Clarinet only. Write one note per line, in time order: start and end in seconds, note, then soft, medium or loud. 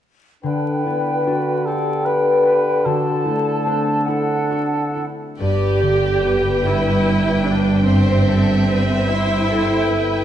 0.43 0.86 D4 soft
0.85 1.28 E4 soft
1.27 1.67 F#4 soft
1.66 2.83 G4 soft
2.84 3.27 F#4 soft
3.25 3.68 E4 soft
3.66 4.08 D4 soft
4.09 5.04 D4 soft